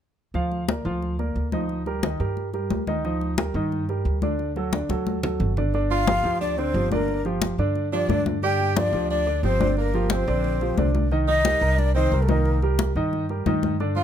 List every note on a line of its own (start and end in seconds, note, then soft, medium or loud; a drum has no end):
0.34 0.81 D2 medium
0.34 0.62 F3 medium
0.34 0.62 F4 medium
0.34 0.62 F5 medium
0.34 high conga soft
0.52 high conga soft
0.68 0.82 A#3 soft
0.68 0.82 A#4 soft
0.68 0.82 D5 soft
0.68 high conga medium
0.85 1.32 D2 medium
0.85 1.13 F3 medium
0.85 1.13 F4 medium
0.85 1.13 F5 medium
1.02 high conga soft
1.19 1.46 A#3 medium
1.19 1.47 A#4 medium
1.19 1.47 D5 medium
1.19 high conga soft
1.35 2.14 D2 medium
1.35 high conga soft
1.52 1.80 F3 medium
1.52 1.80 D#4 medium
1.52 1.80 D#5 medium
1.52 high conga medium
1.69 high conga soft
1.86 2.00 G3 medium
1.86 2.00 G4 medium
1.86 2.01 A#4 medium
1.86 high conga soft
2.03 2.17 D#3 medium
2.03 2.17 D#4 medium
2.03 2.17 D#5 medium
2.03 high conga medium
2.20 2.67 G2 medium
2.20 2.48 G3 medium
2.20 2.48 G4 medium
2.20 2.48 A#4 medium
2.20 high conga soft
2.37 high conga soft
2.53 2.81 G3 medium
2.53 2.81 G4 medium
2.53 2.82 A#4 medium
2.53 high conga soft
2.70 3.49 D2 medium
2.70 high conga medium
2.87 3.01 D#3 medium
2.87 3.01 D#4 medium
2.87 3.02 D#5 medium
2.87 high conga medium
3.05 3.32 F3 medium
3.05 3.32 D#4 medium
3.05 3.32 D#5 medium
3.05 high conga soft
3.21 high conga soft
3.38 3.52 G3 medium
3.38 3.52 G4 medium
3.38 3.52 A#4 medium
3.38 high conga medium
3.54 4.02 G2 medium
3.54 3.83 D#3 medium
3.54 3.83 D#4 medium
3.54 3.83 D#5 medium
3.72 high conga soft
3.89 4.17 G3 medium
3.89 4.17 G4 medium
3.89 4.17 A#4 medium
3.89 high conga soft
4.05 4.84 D2 medium
4.05 high conga soft
4.22 4.50 D3 medium
4.22 4.50 D4 medium
4.22 4.50 D5 medium
4.22 high conga medium
4.39 high conga soft
4.56 4.70 F#3 medium
4.56 4.70 F#4 medium
4.56 4.70 A4 medium
4.56 high conga soft
4.73 4.87 D3 medium
4.73 4.87 D4 medium
4.73 4.87 D5 medium
4.73 high conga medium
4.89 5.36 D2 medium
4.89 5.17 F#3 medium
4.89 5.18 F#4 medium
4.89 5.18 A4 medium
4.89 high conga medium
5.07 high conga medium
5.23 5.51 F#3 medium
5.23 5.51 F#4 medium
5.23 5.52 A4 medium
5.23 low conga medium
5.40 6.18 G1 medium
5.40 low conga medium
5.57 5.71 D3 medium
5.57 5.71 D4 medium
5.57 5.71 D5 medium
5.57 low conga medium
5.74 6.02 D3 medium
5.74 6.02 D4 medium
5.74 6.02 D5 medium
5.74 high conga soft
5.91 6.38 F4 medium
5.91 6.38 F5 loud
5.91 high conga soft
6.07 6.22 F3 soft
6.07 6.22 F4 medium
6.07 6.22 G4 medium
6.07 high conga loud
6.24 6.71 D2 medium
6.24 6.52 F3 medium
6.24 6.52 F4 medium
6.24 6.52 G4 medium
6.41 6.59 D4 medium
6.41 6.60 D5 medium
6.41 high conga soft
6.57 6.72 D3 medium
6.57 6.91 C4 medium
6.57 6.72 D4 medium
6.57 6.92 C5 medium
6.57 6.72 D5 medium
6.57 high conga soft
6.74 7.53 G1 medium
6.74 6.89 F3 medium
6.74 6.89 F4 medium
6.74 6.89 G4 medium
6.74 high conga soft
6.91 7.19 D3 medium
6.91 7.23 A#3 medium
6.91 7.20 D4 medium
6.91 7.23 A#4 medium
6.91 7.20 D5 medium
6.91 high conga medium
7.08 high conga soft
7.25 7.53 F3 medium
7.25 7.53 F4 medium
7.25 7.53 G4 medium
7.25 high conga soft
7.42 high conga medium
7.58 8.06 G2 medium
7.58 7.86 D3 medium
7.58 7.87 D4 medium
7.58 7.87 D5 medium
7.58 high conga soft
7.75 high conga soft
7.92 8.06 F3 medium
7.92 8.24 D4 medium
7.92 8.06 F4 medium
7.92 8.07 G4 medium
7.92 8.24 D5 medium
7.92 high conga soft
8.09 8.87 G2 medium
8.09 8.37 D3 medium
8.09 8.37 D4 medium
8.09 8.37 D5 medium
8.09 high conga medium
8.26 high conga medium
8.43 8.71 D3 medium
8.43 8.71 D4 medium
8.43 8.78 G4 medium
8.43 8.71 D5 medium
8.43 8.79 G5 medium
8.43 high conga soft
8.60 high conga soft
8.76 8.90 F3 medium
8.76 9.10 D4 medium
8.76 8.90 F4 medium
8.76 8.91 G4 soft
8.76 9.10 D5 medium
8.76 high conga medium
8.93 9.40 D2 medium
8.93 9.21 F3 medium
8.93 9.21 F4 medium
8.93 9.21 G4 medium
9.10 9.42 D4 medium
9.10 9.42 D5 medium
9.10 high conga soft
9.26 9.40 D3 medium
9.26 9.41 D4 medium
9.26 9.41 D5 medium
9.26 high conga soft
9.43 10.22 G1 medium
9.43 9.57 F3 medium
9.43 9.75 C4 medium
9.43 9.57 F4 medium
9.43 9.58 G4 medium
9.43 9.75 C5 loud
9.43 high conga soft
9.60 9.88 D3 medium
9.60 9.88 D4 medium
9.60 9.88 D5 medium
9.60 high conga medium
9.77 10.09 A#3 medium
9.77 10.09 A#4 medium
9.77 high conga soft
9.94 10.22 F3 medium
9.94 10.22 F4 medium
9.94 10.22 G4 medium
9.94 high conga soft
10.10 10.91 C4 medium
10.10 10.91 C5 medium
10.10 high conga medium
10.27 10.74 A#1 medium
10.27 10.55 D3 medium
10.27 10.55 D4 medium
10.27 10.55 D5 medium
10.27 high conga soft
10.44 high conga soft
10.61 10.75 F3 medium
10.61 10.75 F4 medium
10.61 10.75 G4 medium
10.61 high conga soft
10.78 11.56 C2 medium
10.78 11.06 D3 medium
10.78 11.06 D4 medium
10.78 11.06 D5 medium
10.78 high conga medium
10.95 high conga medium
11.11 11.39 D#3 medium
11.11 11.39 D#4 medium
11.11 11.40 D#5 medium
11.11 high conga soft
11.28 11.79 D#4 medium
11.28 11.80 D#5 loud
11.28 high conga soft
11.45 11.59 G3 medium
11.45 11.59 G4 medium
11.45 11.60 A#4 medium
11.45 high conga medium
11.61 12.08 C2 medium
11.61 11.89 G3 medium
11.61 11.89 G4 medium
11.61 11.90 A#4 medium
11.77 11.94 D4 medium
11.77 11.95 D5 medium
11.77 high conga soft
11.94 12.09 D#3 medium
11.94 12.23 C4 medium
11.94 12.10 D#4 medium
11.94 12.24 C5 medium
11.94 12.10 D#5 medium
11.94 high conga soft
12.12 12.90 C2 medium
12.12 12.26 G3 medium
12.12 12.26 G4 medium
12.12 12.26 A#4 medium
12.12 high conga soft
12.21 12.30 A3 soft
12.21 12.30 A4 soft
12.28 12.56 D#3 medium
12.28 12.62 A#3 medium
12.28 12.57 D#4 medium
12.28 12.62 A#4 medium
12.28 12.57 D#5 medium
12.28 high conga medium
12.45 high conga soft
12.62 12.90 G3 medium
12.62 12.90 G4 medium
12.62 12.91 A#4 medium
12.62 high conga soft
12.79 high conga medium
12.95 13.43 G2 medium
12.95 13.24 D#3 medium
12.95 13.24 D#4 medium
12.95 13.24 D#5 medium
12.95 high conga soft
13.13 high conga soft
13.29 13.44 G3 medium
13.29 13.44 G4 medium
13.29 13.44 A#4 medium
13.29 high conga soft
13.46 14.04 G2 medium
13.46 13.74 D#3 medium
13.46 13.74 D#4 medium
13.46 13.74 D#5 medium
13.46 high conga medium
13.63 high conga medium
13.80 14.04 D3 medium
13.80 14.04 D4 medium
13.80 14.04 D5 medium
13.80 high conga soft
13.96 14.04 F4 medium
13.96 14.04 F5 medium
13.96 high conga soft